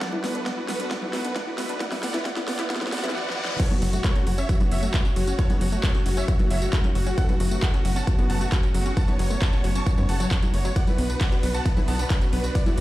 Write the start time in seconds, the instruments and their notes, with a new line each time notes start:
Already playing: analog synth pad D3, riser
0.01 analog synth pad F#3 A3 B3 F#4, synth arpeggio sound B3, supersaw synth D5 F#5, kick, snare, closed hi-hat
0.13 synth arpeggio sound E4, supersaw synth B4, high conga
0.24 analog synth bass D2, synth arpeggio sound B3, supersaw synth B4, snare, open hi-hat
0.35 synth arpeggio sound D4, supersaw synth B4, closed hi-hat
0.46 synth arpeggio sound B3, supersaw synth D5 F#5, kick, snare, closed hi-hat
0.57 synth arpeggio sound E4, supersaw synth B4
0.69 analog synth bass D2, synth arpeggio sound B3, supersaw synth B4, snare, open hi-hat
0.80 synth arpeggio sound D4, supersaw synth B4, closed hi-hat
0.91 synth arpeggio sound B3, supersaw synth D5 F#5, kick, snare, closed hi-hat
1.02 analog synth bass D2, synth arpeggio sound E4, supersaw synth B4, high conga
1.13 analog synth bass D2, synth arpeggio sound B3, supersaw synth B4, snare, open hi-hat
1.25 synth arpeggio sound D4, supersaw synth B4, closed hi-hat
1.36 synth arpeggio sound B3, supersaw synth D5 F#5, kick, snare, closed hi-hat
1.47 synth arpeggio sound E4, supersaw synth B4
1.58 analog synth bass D2, synth arpeggio sound B3, supersaw synth B4, snare, open hi-hat
1.69 synth arpeggio sound D4, supersaw synth B4, closed hi-hat
1.80 synth arpeggio sound B3, analog synth pad C#4, supersaw synth D5 F#5, kick, snare, closed hi-hat
1.92 synth arpeggio sound E4, supersaw synth B4, snare, open hi-hat, high conga
2.03 analog synth bass D2, synth arpeggio sound B3, supersaw synth D5 F#5, snare, open hi-hat
2.14 synth arpeggio sound E4, supersaw synth B4, snare, closed hi-hat
2.25 synth arpeggio sound B3, supersaw synth D5 F#5, kick, snare, closed hi-hat
2.37 synth arpeggio sound E4, supersaw synth B4, snare
2.48 analog synth bass D2, synth arpeggio sound B3, supersaw synth D5 F#5, snare, open hi-hat
2.59 synth arpeggio sound E4, supersaw synth B4, snare, closed hi-hat
2.70 synth arpeggio sound B3, supersaw synth D5 F#5, kick, snare, closed hi-hat, reverse cymbal
2.76 snare
2.81 analog synth bass D2, synth arpeggio sound E4, supersaw synth B4, snare, high conga
2.87 snare
2.92 analog synth bass D2, synth arpeggio sound B3, supersaw synth D5 F#5, snare, open hi-hat
2.98 snare
3.04 synth arpeggio sound E4, supersaw synth B4, snare, closed hi-hat, high conga
3.09 snare
3.15 supersaw synth D5 F#5, snare
3.26 supersaw synth B4, snare
3.37 supersaw synth D5 F#5
3.45 supersaw synth B4, snare
3.59 analog synth pad A2 C#3 F#3 C#4 F#4, synth arpeggio sound F#3, supersaw synth A4 C#5, grand piano C#5, kick, closed hi-hat, crash, tambourine, impact
3.71 synth arpeggio sound B3, grand piano F#4, supersaw synth F#4, closed hi-hat, tambourine, high conga
3.82 analog synth bass F#1, synth arpeggio sound F#3, supersaw synth F#4, grand piano F#4, open hi-hat
3.93 synth arpeggio sound A3, supersaw synth F#4, grand piano F#4, closed hi-hat, tambourine
4.04 synth arpeggio sound G#3, supersaw synth A4 C#5, grand piano C#5, kick, clap, closed hi-hat, tambourine
4.16 synth arpeggio sound C#4, supersaw synth F#4, grand piano F#4, closed hi-hat, tambourine
4.27 analog synth bass F#1, synth arpeggio sound F#3, supersaw synth F#4, grand piano F#4, open hi-hat
4.38 synth arpeggio sound C#4, supersaw synth C#5 E5, grand piano E5, closed hi-hat, tambourine
4.49 synth arpeggio sound F#3, supersaw synth F#4, grand piano F#4, kick, closed hi-hat, tambourine
4.60 analog synth bass F#1, synth arpeggio sound B3, supersaw synth F#4, grand piano F#4, closed hi-hat, tambourine, high conga
4.71 analog synth bass F#1, synth arpeggio sound F#3, supersaw synth C#5 E5, grand piano E5, open hi-hat
4.83 synth arpeggio sound A3, grand piano F#4, supersaw synth F#4, closed hi-hat, tambourine
4.94 synth arpeggio sound G#3, supersaw synth F#4, grand piano F#4, kick, clap, closed hi-hat, tambourine
5.05 synth arpeggio sound C#4, closed hi-hat, tambourine
5.16 analog synth bass F#1, synth arpeggio sound F#3, supersaw synth F#4, grand piano F#4, open hi-hat
5.27 synth arpeggio sound C#4, supersaw synth F#4, grand piano F#4, closed hi-hat, tambourine
5.39 synth arpeggio sound F#3, supersaw synth A4 C#5, grand piano C#5, kick, closed hi-hat, tambourine
5.50 synth arpeggio sound B3, supersaw synth F#4, grand piano F#4, closed hi-hat, tambourine, high conga
5.61 analog synth bass F#1, synth arpeggio sound F#3, supersaw synth F#4, grand piano F#4, open hi-hat
5.72 synth arpeggio sound A3, supersaw synth F#4, grand piano F#4, closed hi-hat, tambourine
5.83 synth arpeggio sound G#3, supersaw synth A4 C#5, grand piano C#5, kick, clap, closed hi-hat, tambourine
5.95 synth arpeggio sound C#4, grand piano F#4, supersaw synth F#4, closed hi-hat, tambourine
6.06 analog synth bass F#1, synth arpeggio sound F#3, grand piano F#4, supersaw synth F#4, open hi-hat
6.17 synth arpeggio sound C#4, supersaw synth C#5 E5, grand piano E5, closed hi-hat, tambourine
6.28 synth arpeggio sound F#3, grand piano F#4, supersaw synth F#4, kick, closed hi-hat, tambourine
6.39 analog synth bass F#1, synth arpeggio sound B3, grand piano F#4, supersaw synth F#4, closed hi-hat, tambourine, high conga
6.51 analog synth bass F#1, synth arpeggio sound F#3, supersaw synth C#5 E5, grand piano E5, open hi-hat
6.62 synth arpeggio sound A3, grand piano F#4, supersaw synth F#4, closed hi-hat, tambourine
6.73 synth arpeggio sound G#3, supersaw synth F#4, kick, clap, closed hi-hat, tambourine
6.84 synth arpeggio sound C#4, closed hi-hat, tambourine, high conga
6.95 analog synth bass F#1, synth arpeggio sound F#3, grand piano F#4, supersaw synth F#4, open hi-hat
7.07 synth arpeggio sound C#4, supersaw synth F#4, grand piano F#4, closed hi-hat, tambourine
7.18 synth arpeggio sound F#3, analog synth pad B3, supersaw synth A4 F#5, grand piano F#5, kick, closed hi-hat, tambourine
7.29 synth arpeggio sound B3, grand piano F#4, supersaw synth F#4, closed hi-hat, tambourine, high conga
7.40 analog synth bass F#1, synth arpeggio sound F#3, grand piano F#4, supersaw synth F#4, open hi-hat
7.51 synth arpeggio sound A3, grand piano F#4, supersaw synth F#4, closed hi-hat, tambourine
7.62 synth arpeggio sound G#3, supersaw synth A4 F#5, grand piano F#5, kick, clap, closed hi-hat, tambourine
7.74 synth arpeggio sound C#4, grand piano F#4, supersaw synth F#4, closed hi-hat, tambourine
7.85 analog synth bass F#1, synth arpeggio sound F#3, grand piano F#4, supersaw synth F#4, open hi-hat
7.96 synth arpeggio sound C#4, supersaw synth F#5 A5, grand piano A5, closed hi-hat, tambourine
8.07 synth arpeggio sound F#3, grand piano F#4, supersaw synth F#4, kick, closed hi-hat, tambourine
8.18 analog synth bass F#1, synth arpeggio sound B3, grand piano F#4, supersaw synth F#4, closed hi-hat, tambourine, high conga
8.29 analog synth bass F#1, synth arpeggio sound F#3, supersaw synth F#5 A5, grand piano A5, open hi-hat
8.41 synth arpeggio sound A3, grand piano F#4, supersaw synth F#4, closed hi-hat, tambourine
8.52 synth arpeggio sound G#3, supersaw synth F#4, grand piano F#4, kick, clap, closed hi-hat, tambourine
8.63 synth arpeggio sound C#4, closed hi-hat, tambourine
8.74 analog synth bass F#1, synth arpeggio sound F#3, grand piano F#4, supersaw synth F#4, open hi-hat
8.86 synth arpeggio sound C#4, grand piano F#4, supersaw synth F#4, tambourine
8.97 synth arpeggio sound F#3, supersaw synth F#5 A5, grand piano A5, kick, closed hi-hat, tambourine
9.08 synth arpeggio sound B3, grand piano C#5, supersaw synth C#5, closed hi-hat, tambourine, high conga
9.19 analog synth bass F#1, synth arpeggio sound F#3, grand piano C#5, supersaw synth C#5, open hi-hat
9.30 synth arpeggio sound A3, grand piano C#5, supersaw synth C#5, closed hi-hat, tambourine
9.41 synth arpeggio sound G#3, supersaw synth F#5 A5, grand piano A5, kick, clap, closed hi-hat, tambourine
9.53 synth arpeggio sound C#4, grand piano C#5, supersaw synth C#5, closed hi-hat, tambourine
9.64 analog synth bass F#1, synth arpeggio sound F#3, grand piano C#5, supersaw synth C#5, open hi-hat
9.75 synth arpeggio sound C#4, supersaw synth A5 C#6, grand piano C#6, closed hi-hat, tambourine
9.86 synth arpeggio sound F#3, grand piano C#5, supersaw synth C#5, kick, closed hi-hat, tambourine
9.97 analog synth bass F#2, synth arpeggio sound B3, grand piano C#5, supersaw synth C#5, closed hi-hat, tambourine, high conga
10.09 analog synth bass F#1, synth arpeggio sound C#3, supersaw synth F#5 A5, grand piano A5, open hi-hat
10.20 synth arpeggio sound F#3, grand piano C#5, supersaw synth C#5, closed hi-hat, tambourine
10.31 synth arpeggio sound C#3, supersaw synth C#5, kick, clap, closed hi-hat, tambourine
10.42 synth arpeggio sound F#3, closed hi-hat, tambourine, high conga
10.54 analog synth bass F#1, synth arpeggio sound A3, grand piano C#5, supersaw synth C#5, open hi-hat
10.65 synth arpeggio sound F#3, grand piano C#5, supersaw synth C#5, closed hi-hat, tambourine
10.76 analog synth pad B2 D3 D4, synth arpeggio sound B3, supersaw synth D5 F#5, grand piano F#5, kick, closed hi-hat, ride, tambourine
10.87 synth arpeggio sound E4, grand piano B4, supersaw synth B4, closed hi-hat, tambourine, high conga
10.98 analog synth bass B1, synth arpeggio sound B3, grand piano B4, supersaw synth B4, open hi-hat
11.10 synth arpeggio sound D4, grand piano B4, supersaw synth B4, closed hi-hat, tambourine
11.21 synth arpeggio sound C#4, supersaw synth D5 F#5, grand piano F#5, kick, clap, closed hi-hat, ride, tambourine
11.32 synth arpeggio sound F#4, grand piano B4, supersaw synth B4, closed hi-hat, tambourine
11.43 analog synth bass B1, synth arpeggio sound B3, grand piano B4, supersaw synth B4, open hi-hat
11.54 synth arpeggio sound F#4, supersaw synth F#5 A5, grand piano A5, tambourine
11.65 synth arpeggio sound B3, grand piano B4, supersaw synth B4, kick, closed hi-hat, ride, tambourine
11.77 analog synth bass B1, synth arpeggio sound E4, grand piano B4, supersaw synth B4, closed hi-hat, tambourine, high conga
11.88 analog synth bass B1, synth arpeggio sound B3, supersaw synth F#5 A5, grand piano A5, open hi-hat
11.99 synth arpeggio sound D4, grand piano B4, supersaw synth B4, closed hi-hat, tambourine
12.10 synth arpeggio sound C#4, grand piano B4, supersaw synth B4, kick, clap, closed hi-hat, ride, tambourine
12.22 synth arpeggio sound F#4, closed hi-hat, tambourine
12.33 analog synth bass B1, synth arpeggio sound B3, grand piano B4, supersaw synth B4, open hi-hat
12.44 synth arpeggio sound F#4, grand piano B4, supersaw synth B4, closed hi-hat, tambourine
12.55 synth arpeggio sound B3, supersaw synth B4 D5, grand piano D5, kick, closed hi-hat, ride, tambourine
12.66 synth arpeggio sound E4, grand piano F#4, supersaw synth F#4, closed hi-hat, tambourine, high conga
12.77 analog synth bass B1, synth arpeggio sound B3, grand piano F#4, open hi-hat